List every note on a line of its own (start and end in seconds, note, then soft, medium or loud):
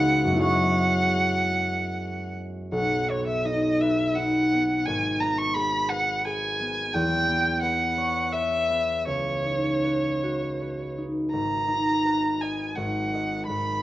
0.00 0.36 C#2 medium
0.00 0.27 G#3 medium
0.00 0.30 B3 medium
0.00 0.41 D#4 medium
0.00 0.36 F#4 medium
0.00 0.40 G#4 medium
0.00 3.53 B4 medium
0.00 0.38 C#5 medium
0.00 0.43 D#5 loud
0.00 2.07 E5 loud
0.00 0.41 F#5 medium
0.00 2.78 F#5 loud
0.00 0.61 G#5 medium
0.00 1.36 B5 loud
0.00 1.34 E6 loud
0.25 2.67 F#2 medium
0.25 2.69 G#3 soft
0.31 3.09 B3 soft
0.31 2.72 E4 soft
0.37 4.27 F#4 soft
0.37 2.75 G#4 medium
0.37 4.30 C#5 medium
0.42 2.32 F#5 medium
2.72 4.88 B1 medium
2.72 3.12 F#5 medium
3.10 4.52 B3 soft
3.10 3.27 C#5 medium
3.27 3.47 E5 medium
3.45 4.16 D#4 soft
3.45 3.82 D#5 medium
3.80 5.90 B4 soft
3.80 4.17 E5 medium
4.15 6.98 D#4 soft
4.15 4.87 F#5 medium
4.53 5.21 B3 soft
4.86 6.98 G#1 medium
4.86 5.22 G#5 medium
5.21 6.59 B3 soft
5.21 5.40 A#5 medium
5.38 5.56 C#6 medium
5.54 6.25 G#4 medium
5.54 5.91 B5 medium
5.89 7.62 B4 medium
5.89 6.26 F#5 medium
6.25 6.98 G#4 medium
6.25 6.95 G#5 medium
6.60 7.27 B3 soft
6.94 9.11 E2 medium
6.94 7.62 G5 loud
7.28 8.69 B3 medium
7.62 8.32 B4 medium
7.62 8.34 F#5 medium
7.98 11.35 C#5 medium
8.33 9.83 B4 soft
8.33 9.07 E5 medium
8.70 12.60 B3 soft
9.07 11.35 C#2 soft
9.07 10.93 C#5 medium
9.46 10.97 D#4 soft
9.84 10.60 B4 soft
10.23 13.82 F#4 soft
10.61 12.04 B4 soft
10.98 11.67 D#4 soft
11.32 12.76 G#1 soft
11.32 12.42 A#5 medium
11.68 13.82 D#4 soft
12.05 12.79 B4 soft
12.40 13.13 D#5 soft
12.40 12.77 G#5 medium
12.76 13.48 G#1 soft
12.76 13.46 F#5 medium
13.14 13.82 A#4 soft
13.14 13.82 D#5 soft
13.47 13.82 G#1 soft
13.47 13.82 B5 medium